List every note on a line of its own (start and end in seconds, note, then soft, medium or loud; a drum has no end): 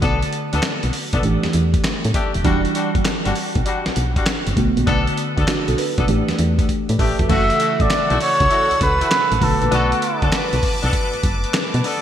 0.00 0.24 B1 medium
0.00 1.20 D3 medium
0.00 1.20 A3 medium
0.00 1.21 B3 medium
0.00 0.18 B3 medium
0.00 0.19 D4 medium
0.00 1.21 F#4 medium
0.00 0.19 A4 loud
0.00 kick loud
0.00 closed hi-hat medium
0.22 closed hi-hat medium
0.33 closed hi-hat medium
0.53 0.60 D2 medium
0.53 0.61 B3 medium
0.53 0.61 D4 medium
0.53 0.61 A4 medium
0.53 closed hi-hat medium
0.63 snare loud
0.63 clap medium
0.63 closed hi-hat medium
0.83 0.91 B1 medium
0.83 closed hi-hat soft
0.93 open hi-hat medium
1.13 1.21 B1 medium
1.13 1.21 B3 medium
1.13 1.21 D4 medium
1.13 1.22 A4 medium
1.13 kick medium
1.13 closed hi-hat medium
1.22 1.38 A1 medium
1.22 2.42 E3 medium
1.22 2.42 A3 medium
1.22 2.42 D4 medium
1.22 2.43 G4 medium
1.22 closed hi-hat medium
1.43 1.48 E2 medium
1.43 snare medium
1.43 closed hi-hat soft
1.53 1.76 E2 medium
1.53 closed hi-hat medium
1.74 kick loud
1.74 closed hi-hat medium
1.84 snare loud
1.84 clap medium
1.84 closed hi-hat medium
2.04 2.12 A2 medium
2.04 closed hi-hat medium
2.14 2.30 A3 medium
2.14 2.31 D4 medium
2.14 2.31 G4 medium
2.14 kick medium
2.14 closed hi-hat medium
2.34 2.42 D#1 medium
2.34 closed hi-hat medium
2.43 2.67 E1 loud
2.43 4.52 E3 medium
2.43 4.52 G3 medium
2.43 2.61 G3 medium
2.43 2.61 D4 medium
2.43 4.53 D4 medium
2.43 2.61 F#4 loud
2.43 4.53 F#4 medium
2.43 kick loud
2.43 closed hi-hat medium
2.65 closed hi-hat medium
2.74 2.91 G3 medium
2.74 2.91 D4 medium
2.74 2.91 F#4 medium
2.74 closed hi-hat medium
2.95 3.02 F#1 medium
2.95 kick medium
2.95 closed hi-hat medium
3.05 snare loud
3.05 clap medium
3.05 closed hi-hat medium
3.25 3.33 G1 medium
3.25 3.33 G3 medium
3.25 3.33 D4 medium
3.25 3.34 F#4 medium
3.25 closed hi-hat medium
3.35 open hi-hat medium
3.55 3.63 B1 medium
3.55 kick loud
3.55 closed hi-hat medium
3.65 3.82 G3 medium
3.65 3.82 D4 medium
3.65 3.82 F#4 medium
3.65 closed hi-hat medium
3.86 3.91 B1 soft
3.86 snare medium
3.86 closed hi-hat soft
3.96 4.18 B1 medium
3.96 closed hi-hat medium
4.16 4.24 G3 medium
4.16 4.24 D4 medium
4.16 4.25 F#4 medium
4.16 kick medium
4.16 closed hi-hat medium
4.26 snare loud
4.26 clap medium
4.26 closed hi-hat medium
4.47 4.54 G1 medium
4.47 closed hi-hat medium
4.56 4.71 B1 medium
4.56 6.05 D3 medium
4.56 6.05 A3 medium
4.56 6.05 B3 medium
4.56 5.46 F#4 medium
4.56 kick medium
4.56 closed hi-hat medium
4.77 4.84 A#1 medium
4.77 closed hi-hat soft
4.86 5.09 B1 loud
4.86 5.03 B3 loud
4.86 5.03 D4 medium
4.86 5.03 A4 loud
4.86 kick loud
4.86 closed hi-hat medium
5.07 closed hi-hat soft
5.17 closed hi-hat medium
5.37 5.45 D2 medium
5.37 5.45 B3 medium
5.37 5.46 D4 medium
5.37 5.46 A4 medium
5.37 kick medium
5.37 closed hi-hat medium
5.48 5.67 D4 medium
5.48 5.67 F#4 medium
5.48 snare loud
5.48 clap medium
5.48 closed hi-hat medium
5.68 5.75 B1 medium
5.68 5.78 F#4 medium
5.68 5.77 A4 medium
5.68 closed hi-hat medium
5.78 5.97 B4 medium
5.78 open hi-hat medium
5.98 6.05 B1 medium
5.98 6.06 B3 medium
5.98 6.06 D4 medium
5.98 6.06 A4 medium
5.98 6.27 B4 medium
5.98 6.27 D5 medium
5.98 kick loud
5.98 closed hi-hat medium
6.07 6.23 A1 loud
6.07 7.26 E3 medium
6.07 7.27 A3 medium
6.07 7.27 D4 medium
6.07 6.68 G4 medium
6.07 closed hi-hat medium
6.29 6.33 E2 soft
6.29 snare medium
6.29 closed hi-hat soft
6.39 6.61 E2 loud
6.39 closed hi-hat medium
6.59 kick medium
6.59 closed hi-hat medium
6.69 kick soft
6.69 closed hi-hat medium
6.89 6.97 A2 medium
6.89 6.98 B4 medium
6.89 6.99 D5 medium
6.89 closed hi-hat medium
6.99 7.14 A1 medium
6.99 7.15 A3 medium
6.99 7.15 D4 medium
6.99 7.15 G4 medium
6.99 7.19 G4 medium
6.99 7.18 B4 medium
6.99 kick medium
6.99 open hi-hat medium
7.19 7.27 F1 medium
7.19 7.29 F#4 medium
7.19 7.48 A4 medium
7.19 kick medium
7.19 closed hi-hat soft
7.28 7.51 F#1 loud
7.28 9.38 C#3 medium
7.28 9.37 E3 medium
7.28 9.37 A3 medium
7.28 7.45 A3 medium
7.28 7.46 E4 medium
7.28 7.46 F#4 loud
7.28 9.38 F#4 medium
7.28 9.39 A4 medium
7.28 7.83 E5 loud
7.28 9.39 F#5 medium
7.28 9.39 E6 medium
7.28 kick loud
7.28 closed hi-hat medium
7.28 crash medium
7.50 closed hi-hat medium
7.59 7.76 A3 medium
7.59 7.76 E4 medium
7.59 7.76 F#4 medium
7.59 closed hi-hat medium
7.80 7.87 A1 medium
7.80 8.21 D5 medium
7.80 kick medium
7.80 closed hi-hat medium
7.90 snare loud
7.90 clap medium
7.90 closed hi-hat medium
8.10 8.18 B1 medium
8.10 8.18 A3 medium
8.10 8.18 E4 medium
8.10 8.18 F#4 medium
8.10 closed hi-hat soft
8.20 8.78 C#5 loud
8.20 open hi-hat medium
8.40 8.48 C#2 medium
8.40 kick loud
8.40 closed hi-hat medium
8.50 8.67 A3 medium
8.50 8.67 E4 medium
8.50 8.67 F#4 medium
8.50 closed hi-hat medium
8.71 8.75 C#2 soft
8.71 closed hi-hat soft
8.81 9.03 C#2 medium
8.81 9.45 B4 loud
8.81 kick medium
8.81 closed hi-hat medium
9.01 9.09 A3 medium
9.01 9.09 E4 medium
9.01 9.09 F#4 medium
9.01 closed hi-hat medium
9.11 snare loud
9.11 clap medium
9.11 closed hi-hat medium
9.32 9.39 A1 medium
9.32 closed hi-hat medium
9.40 9.56 B1 loud
9.40 11.79 D3 medium
9.40 11.80 A3 medium
9.40 11.80 B3 medium
9.40 11.81 F#4 medium
9.40 9.73 A4 medium
9.40 12.02 B4 medium
9.40 12.02 A5 medium
9.40 12.02 D6 medium
9.40 kick medium
9.40 open hi-hat medium
9.62 9.69 A#1 medium
9.62 closed hi-hat medium
9.71 9.94 B1 loud
9.71 9.88 B3 medium
9.71 9.88 D4 medium
9.71 10.29 F#4 medium
9.71 9.88 A4 loud
9.71 closed hi-hat medium
9.92 closed hi-hat soft
10.02 closed hi-hat medium
10.22 10.30 D2 medium
10.22 10.30 B3 medium
10.22 10.30 D4 medium
10.22 10.31 A4 medium
10.22 kick medium
10.22 closed hi-hat medium
10.32 snare loud
10.32 clap medium
10.32 closed hi-hat medium
10.53 10.60 B1 medium
10.53 closed hi-hat medium
10.63 kick medium
10.63 open hi-hat medium
10.82 10.91 B1 medium
10.82 10.91 B3 medium
10.82 10.91 D4 medium
10.82 10.91 A4 medium
10.82 closed hi-hat medium
10.93 kick medium
10.93 closed hi-hat medium
11.13 11.18 F#1 soft
11.13 closed hi-hat soft
11.23 11.45 F#1 medium
11.23 kick medium
11.23 closed hi-hat medium
11.44 closed hi-hat medium
11.54 snare loud
11.54 clap medium
11.54 closed hi-hat medium
11.74 11.81 B2 medium
11.74 closed hi-hat medium
11.83 12.00 B3 medium
11.83 12.00 D4 medium
11.83 12.00 A4 medium
11.83 open hi-hat medium